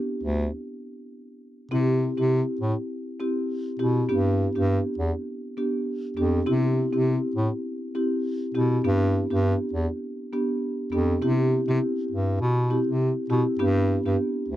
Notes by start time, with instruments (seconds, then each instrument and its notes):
0.23 bass clarinet D2
1.71 bass clarinet C3, marimba C4 E4 G4
2.17 bass clarinet C3, marimba C4 E4 G4
2.61 bass clarinet A2
3.20 marimba C4 E4 G4
3.79 bass clarinet B2, marimba C4 E4 G4
4.09 bass clarinet G2, marimba B3 D4 G4
4.55 bass clarinet G2, marimba B3 D4 G4
4.98 bass clarinet E2
5.57 marimba B3 D4 G4
6.17 bass clarinet F2, marimba B3 D4 G4
6.46 bass clarinet C3, marimba C4 E4 G4
6.93 bass clarinet C3, marimba C4 E4 G4
7.36 bass clarinet A2
7.95 marimba C4 E4 G4
8.54 bass clarinet B2, marimba C4 E4 G4
8.84 bass clarinet G2, marimba B3 D4 G4
9.30 bass clarinet G2, marimba B3 D4 G4
9.73 bass clarinet E2
10.33 marimba B3 D4 G4
10.92 bass clarinet F2, marimba B3 D4 G4
11.22 bass clarinet C3, marimba C4 E4 G4
11.68 bass clarinet C3, marimba C4 E4 G4
12.11 bass clarinet G2
12.41 bass clarinet B2
12.70 marimba C4 E4 G4
12.87 bass clarinet C3
13.30 bass clarinet B2, marimba C4 E4 G4
13.59 bass clarinet G2, marimba B3 D4 G4
14.06 bass clarinet G2, marimba B3 D4 G4
14.49 bass clarinet D2